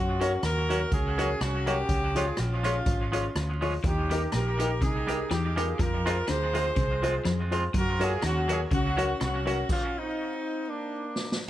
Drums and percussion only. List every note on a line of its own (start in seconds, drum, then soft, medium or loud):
0.21 closed hi-hat medium
0.43 cross-stick loud
0.43 closed hi-hat medium
0.70 closed hi-hat medium
0.92 kick loud
0.92 closed hi-hat medium
1.19 closed hi-hat medium
1.41 cross-stick loud
1.41 closed hi-hat medium
1.67 closed hi-hat medium
1.89 kick loud
1.89 closed hi-hat medium
2.16 closed hi-hat medium
2.37 cross-stick loud
2.37 closed hi-hat medium
2.64 closed hi-hat medium
2.86 kick loud
2.86 closed hi-hat medium
3.13 closed hi-hat medium
3.36 cross-stick loud
3.36 closed hi-hat medium
3.62 open hi-hat soft
3.84 kick loud
3.84 closed hi-hat medium
4.11 closed hi-hat medium
4.32 cross-stick loud
4.32 closed hi-hat medium
4.60 closed hi-hat medium
4.82 kick loud
4.82 closed hi-hat medium
5.08 closed hi-hat medium
5.31 cross-stick loud
5.31 closed hi-hat medium
5.57 closed hi-hat medium
5.79 kick loud
5.79 closed hi-hat medium
6.07 closed hi-hat medium
6.28 cross-stick loud
6.28 closed hi-hat medium
6.55 closed hi-hat medium
6.76 kick loud
6.76 closed hi-hat medium
7.03 closed hi-hat medium
7.25 cross-stick medium
7.25 closed hi-hat medium
7.52 closed hi-hat medium
7.74 kick loud
7.74 closed hi-hat medium
8.01 closed hi-hat medium
8.22 cross-stick loud
8.22 closed hi-hat medium
8.49 closed hi-hat loud
8.71 kick loud
8.71 closed hi-hat medium
8.98 closed hi-hat medium
9.21 cross-stick loud
9.21 closed hi-hat medium
9.47 closed hi-hat medium
9.69 kick loud
9.69 crash medium
11.16 snare medium
11.32 snare medium